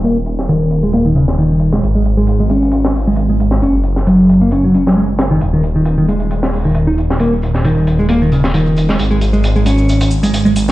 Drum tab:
HH |x-x-x-x-x-x-x-x-|x-x-x-xxx-o-x-x-|x-x-x-x-x-x---x-|x-x-x-xxx-o-x-x-|
SH |-xx--xxx-xx--xxx|-xxxxxxxx-xx-xx-|xxxx-xxxxxxxxxxx|xxxxxxxxxxxxxxxx|
SD |---o-------o---o|---------o-----o|---o-------o--o-|---------o-----o|

HH |x-x-x-x-x-x-x-x-|x-x-x-x-xx-xx-x-|
SH |xxxxxxxxxxxxxxxx|xxxxxxxxxxxxxxxx|
SD |---o-------o---o|----------------|